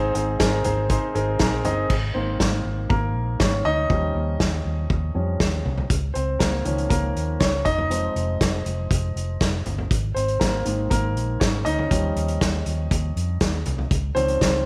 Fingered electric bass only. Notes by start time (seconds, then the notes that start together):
Already playing: G#1
0.15 G#1
0.40 G#1
0.65 G#1
1.15 G#1
1.40 A#1
1.65 G1
1.90 G#1
2.15 G#1
2.40 G#1
2.65 G#1
2.90 G#1
3.15 A#1
3.40 G#1
3.65 D2
3.90 D#2
4.15 D#2
4.40 D#2
4.65 D#2
4.90 D#2
5.15 F2
5.40 D#2
5.65 C2
5.90 C#2
6.16 C#2
6.40 C#2
6.66 C#2
6.91 C#2
7.16 D#2
7.41 C#2
7.66 F1
8.16 F1
8.41 F1
8.66 F1
8.91 F1
9.16 F1
9.41 F1
9.66 G1
9.91 G#1
10.16 G#1
10.41 G#1
10.66 G#1
10.91 G#1
11.16 A#1
11.41 G#1
11.66 D2
11.91 D#2
12.16 D#2
12.41 D#2
12.66 D#2
12.91 D#2
13.16 F2
13.41 D#2
13.66 C2
13.91 C#2
14.16 C#2
14.41 C#2